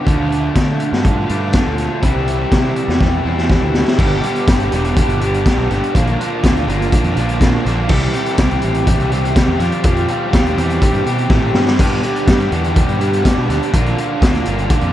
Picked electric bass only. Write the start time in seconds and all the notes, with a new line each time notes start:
0.07 D2
0.56 D3
0.92 G2
1.30 G2
1.66 D2
2.03 C2
2.52 C3
2.88 E2
3.25 E2
3.62 D2
3.98 G1
4.47 G1
4.72 E1
5.07 G1
5.57 B1
5.70 G1
5.95 A#1
6.44 D2
6.67 G1
7.04 F2
7.16 A#1
7.65 A#1
7.90 C2
8.38 C2
8.63 A1
8.99 C2
9.48 E2
9.59 F2
9.84 F2
10.33 D#2
10.58 E2
10.93 G2
11.06 B2
11.29 A2
11.54 G2
11.79 G2
12.27 G2
12.52 E2
12.89 G2
13.37 B2
13.49 D2
13.74 A#1
14.22 D2
14.47 G1
14.82 F2